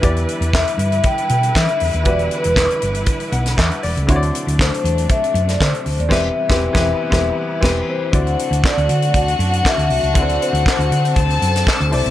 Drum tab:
CC |----------------|----------------|----------------|x-----------x---|
HH |xxxx-xxxxxxx-xox|xxxx-xxxxxxx-xox|xxxx-xxxxxxx-xox|----------------|
CP |----x-------x---|----x-------x---|----x-------x---|----------------|
SD |----o-------o---|----o------oo---|----o------oo---|o--o-o--o---o---|
BD |o---o---o---o---|o---o---o---o---|o---o---o---o---|o--o-o--o---o---|

CC |----------------|----------------|
HH |xxxx-xxxxxxx-xox|xxxx-xxxxxxx-xox|
CP |----x-------x---|----x-------x---|
SD |----o-------o---|----o------oo---|
BD |o---o---o---o---|o---o---o---o---|